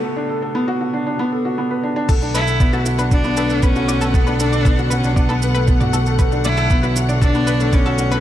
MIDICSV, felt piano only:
0, 0, Header, 1, 2, 480
1, 0, Start_track
1, 0, Tempo, 512821
1, 37, Time_signature, 4, 2, 24, 8
1, 7676, End_track
2, 0, Start_track
2, 0, Title_t, "Felt piano"
2, 0, Program_c, 0, 0
2, 0, Control_c, 0, 64, 127
2, 0, Note_on_c, 0, 57, 98
2, 0, Note_on_c, 0, 59, 102
2, 0, Note_on_c, 0, 62, 77
2, 0, Note_on_c, 0, 66, 68
2, 0, Note_on_c, 0, 69, 75
2, 0, Note_on_c, 0, 71, 71
2, 32, Note_off_c, 0, 57, 0
2, 32, Note_on_c, 0, 57, 83
2, 148, Note_off_c, 0, 57, 0
2, 152, Note_off_c, 0, 62, 0
2, 152, Note_on_c, 0, 62, 77
2, 268, Note_off_c, 0, 62, 0
2, 273, Note_off_c, 0, 69, 0
2, 273, Note_on_c, 0, 69, 73
2, 380, Note_off_c, 0, 69, 0
2, 394, Note_on_c, 0, 69, 81
2, 509, Note_off_c, 0, 69, 0
2, 513, Note_off_c, 0, 59, 0
2, 513, Note_on_c, 0, 59, 103
2, 583, Note_off_c, 0, 59, 0
2, 634, Note_off_c, 0, 66, 0
2, 634, Note_on_c, 0, 66, 102
2, 743, Note_off_c, 0, 66, 0
2, 757, Note_on_c, 0, 66, 77
2, 870, Note_off_c, 0, 66, 0
2, 876, Note_on_c, 0, 62, 78
2, 945, Note_off_c, 0, 62, 0
2, 999, Note_on_c, 0, 62, 84
2, 1111, Note_off_c, 0, 62, 0
2, 1116, Note_on_c, 0, 59, 102
2, 1230, Note_off_c, 0, 59, 0
2, 1237, Note_on_c, 0, 69, 71
2, 1351, Note_off_c, 0, 69, 0
2, 1358, Note_on_c, 0, 66, 73
2, 1426, Note_off_c, 0, 66, 0
2, 1478, Note_on_c, 0, 59, 87
2, 1591, Note_off_c, 0, 59, 0
2, 1598, Note_off_c, 0, 71, 0
2, 1598, Note_on_c, 0, 71, 69
2, 1711, Note_off_c, 0, 71, 0
2, 1716, Note_on_c, 0, 62, 75
2, 1822, Note_off_c, 0, 62, 0
2, 1836, Note_on_c, 0, 62, 99
2, 1950, Note_off_c, 0, 62, 0
2, 1957, Note_on_c, 0, 57, 80
2, 1966, Control_c, 0, 64, 0
2, 2071, Note_off_c, 0, 57, 0
2, 2078, Note_on_c, 0, 62, 76
2, 2120, Control_c, 0, 64, 127
2, 2191, Note_off_c, 0, 62, 0
2, 2198, Note_on_c, 0, 69, 68
2, 2304, Note_off_c, 0, 69, 0
2, 2318, Note_on_c, 0, 69, 77
2, 2431, Note_off_c, 0, 69, 0
2, 2435, Note_on_c, 0, 59, 101
2, 2504, Note_off_c, 0, 59, 0
2, 2553, Note_on_c, 0, 66, 97
2, 2660, Note_off_c, 0, 66, 0
2, 2674, Note_on_c, 0, 66, 78
2, 2789, Note_off_c, 0, 66, 0
2, 2795, Note_on_c, 0, 62, 77
2, 2864, Note_off_c, 0, 62, 0
2, 2915, Note_on_c, 0, 62, 81
2, 3029, Note_off_c, 0, 62, 0
2, 3034, Note_on_c, 0, 59, 98
2, 3149, Note_off_c, 0, 59, 0
2, 3156, Note_on_c, 0, 71, 76
2, 3224, Note_off_c, 0, 71, 0
2, 3276, Note_on_c, 0, 57, 99
2, 3390, Note_off_c, 0, 57, 0
2, 3396, Note_on_c, 0, 59, 102
2, 3464, Note_off_c, 0, 59, 0
2, 3517, Note_on_c, 0, 66, 99
2, 3623, Note_off_c, 0, 66, 0
2, 3637, Note_on_c, 0, 66, 73
2, 3751, Note_off_c, 0, 66, 0
2, 3758, Note_on_c, 0, 57, 96
2, 3864, Note_off_c, 0, 57, 0
2, 3878, Note_on_c, 0, 57, 83
2, 3991, Note_off_c, 0, 57, 0
2, 4000, Note_on_c, 0, 62, 73
2, 4112, Note_off_c, 0, 62, 0
2, 4121, Note_on_c, 0, 69, 74
2, 4224, Note_off_c, 0, 69, 0
2, 4238, Note_on_c, 0, 69, 76
2, 4351, Note_off_c, 0, 69, 0
2, 4359, Note_on_c, 0, 59, 103
2, 4426, Note_off_c, 0, 59, 0
2, 4481, Note_on_c, 0, 66, 101
2, 4586, Note_off_c, 0, 66, 0
2, 4600, Note_on_c, 0, 66, 78
2, 4712, Note_off_c, 0, 66, 0
2, 4721, Note_on_c, 0, 62, 79
2, 4787, Note_off_c, 0, 62, 0
2, 4839, Note_on_c, 0, 62, 75
2, 4952, Note_off_c, 0, 62, 0
2, 4958, Note_on_c, 0, 59, 101
2, 5071, Note_off_c, 0, 59, 0
2, 5082, Note_on_c, 0, 71, 71
2, 5147, Note_off_c, 0, 71, 0
2, 5202, Note_on_c, 0, 57, 96
2, 5313, Note_off_c, 0, 57, 0
2, 5320, Note_on_c, 0, 59, 99
2, 5387, Note_off_c, 0, 59, 0
2, 5441, Note_on_c, 0, 66, 92
2, 5544, Note_off_c, 0, 66, 0
2, 5558, Note_on_c, 0, 66, 75
2, 5671, Note_off_c, 0, 66, 0
2, 5675, Note_on_c, 0, 57, 99
2, 5782, Note_off_c, 0, 57, 0
2, 5796, Note_on_c, 0, 57, 81
2, 5910, Note_off_c, 0, 57, 0
2, 5917, Note_on_c, 0, 62, 73
2, 6031, Note_off_c, 0, 62, 0
2, 6036, Note_on_c, 0, 69, 74
2, 6143, Note_off_c, 0, 69, 0
2, 6157, Note_on_c, 0, 69, 72
2, 6271, Note_off_c, 0, 69, 0
2, 6277, Note_on_c, 0, 59, 101
2, 6345, Note_off_c, 0, 59, 0
2, 6395, Note_on_c, 0, 66, 91
2, 6503, Note_off_c, 0, 66, 0
2, 6517, Note_on_c, 0, 66, 77
2, 6631, Note_off_c, 0, 66, 0
2, 6636, Note_on_c, 0, 62, 81
2, 6705, Note_off_c, 0, 62, 0
2, 6760, Note_on_c, 0, 62, 84
2, 6872, Note_off_c, 0, 62, 0
2, 6879, Note_on_c, 0, 59, 100
2, 6992, Note_off_c, 0, 59, 0
2, 7000, Note_on_c, 0, 71, 76
2, 7067, Note_off_c, 0, 71, 0
2, 7120, Note_on_c, 0, 57, 101
2, 7232, Note_off_c, 0, 57, 0
2, 7241, Note_on_c, 0, 59, 97
2, 7307, Note_off_c, 0, 59, 0
2, 7360, Note_on_c, 0, 66, 92
2, 7467, Note_off_c, 0, 66, 0
2, 7481, Note_on_c, 0, 66, 78
2, 7593, Note_off_c, 0, 66, 0
2, 7600, Note_on_c, 0, 57, 104
2, 7676, Note_off_c, 0, 57, 0
2, 7676, End_track
0, 0, End_of_file